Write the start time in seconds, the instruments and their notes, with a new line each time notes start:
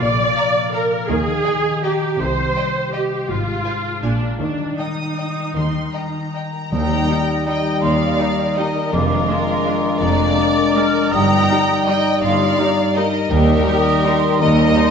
Already playing: harp F3 F4
0.00 double bass section A#1, cello section A#2, harp A#2, viola section D5
0.18 harp F3
0.35 harp A#4, violin section D5 F5 A#5
0.55 harp F4
0.72 viola section A#4, violin section D5 F5 A#5, harp F5
0.92 harp A#4
1.09 double bass section D#2, harp D#3, cello section D#3, viola section G#4
1.26 harp D#4
1.45 harp G4, violin section D#5 G5
1.64 harp D#5
1.83 viola section G4, violin section D#5 G5, harp A#5
2.02 harp G4
2.19 double bass section C2, cello section C3, harp C3, viola section C5
2.38 harp G3
2.56 harp C5, violin section D#5 G5
2.74 harp G4
2.92 viola section G4, harp D#5, violin section D#5 G5
3.11 harp C5
3.29 double bass section G#1, cello section G#2, harp G#2, viola section F4
3.47 harp G#3
3.65 violin section C5 F5 G#5, harp C5
3.85 harp G#4
4.03 double bass section A#1, cello section A#2, harp A#2, viola section D4, violin section F5 G#5
4.22 harp F4 A#4
4.39 double bass section D#2, harp D#3, cello section D#3, viola section D4
4.59 harp G3
4.78 viola section D#4, harp A#4, violin section D#5 G5 D#6
5.00 harp G4
5.17 violin section D#5 G5, harp G5
5.38 harp A#4
5.55 double bass section D#2, cello section D#3, harp D#3, violin section C6
5.75 harp G3
5.93 harp A#4, violin section D#5 G5 A#5
6.14 harp G4
6.34 violin section D#5 G5, harp G5
6.53 harp A#4
6.71 cello section D#2, double bass section D#2, harp D#3, timpani D#3, bassoon G3, french horn section G3 D#4, oboe D#5, violin section G5 A#5
6.90 harp G3
7.09 viola section G3 D#4, harp A#4, flute section G5
7.28 harp G4
7.46 viola section G3 D#4, violin section D#5 G5, harp G5, flute section A#5
7.65 harp A#4
7.82 cello section D#2, double bass section D#2, harp D#3, violin section D5 F5, flute section C6
8.00 harp G3
8.19 viola section G3 D#4, harp A#4, flute section A#5
8.39 harp G4
8.57 viola section G3 D#4, violin section A#4 D#5, harp G5
8.76 harp A#4
8.92 double bass section F1, cello section F2, harp F3, bassoon G#3, french horn section G#3 D4, violin section F4 A#4, oboe D5, flute section D6
9.10 harp D4
9.28 viola section G#3 D4, harp G#4, flute section C6
9.47 harp D5
9.65 viola section G#3 D4, harp A#5
9.83 harp G#4
10.00 double bass section F1, cello section F2, harp F3, violin section A#4 D5, flute section A#5
10.18 harp D4
10.36 viola section G#3 D4, harp G#4, flute section D6
10.56 harp D5
10.74 viola section G#3 D4, harp A#5, flute section F6
10.94 harp G#4
11.12 double bass section G1, cello section G2, harp G2, bassoon G3, french horn section G3 D#4, oboe D#5, violin section G5 A#5, flute section D#6
11.31 harp G3
11.49 viola section G3 D#4, harp A#4, flute section D#6
11.69 harp G4
11.86 viola section G3 D#4, violin section D#5 G5, harp D#5, flute section A#5
12.05 harp A#4
12.21 double bass section G1, cello section G2, harp G2, violin section D5 F5, flute section C6
12.40 harp G3
12.58 viola section G3 D#4, harp A#4, flute section A#5
12.78 harp G4
12.96 viola section G3 D#4, violin section A#4 D#5, harp D#5
13.14 harp A#4
13.30 cello section D#2, double bass section D#2, harp D#3, bassoon G3, french horn section G3 D#4, violin section G4 A#4, oboe D#5, flute section G5
13.48 harp D#4
13.66 viola section G3 D#4, harp G4, flute section D#6
13.85 harp D#5
14.03 viola section G3 D#4, harp A#5, flute section C6
14.22 harp G4
14.40 cello section D#2, double bass section D#2, harp D#3, violin section A#4 D#5, flute section A#5
14.58 harp D#4
14.76 viola section G3 D#4, harp G4, flute section C6